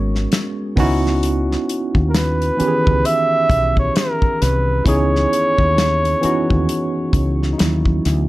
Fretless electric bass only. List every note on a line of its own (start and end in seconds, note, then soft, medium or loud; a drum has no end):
0.00 0.26 G#1 medium
0.78 1.56 C#2 medium
1.96 2.50 D#2 medium
2.60 muted fretless electric bass stroke soft
2.88 3.03 C#2 medium
3.50 3.89 B1 medium
4.42 4.81 C2 loud
4.86 5.25 C#2 medium
5.59 6.14 D#2 medium
6.24 muted fretless electric bass stroke soft
6.51 6.66 D#2 medium
7.14 7.53 C#2 medium
7.61 7.99 D#2 medium
8.06 8.29 D2 medium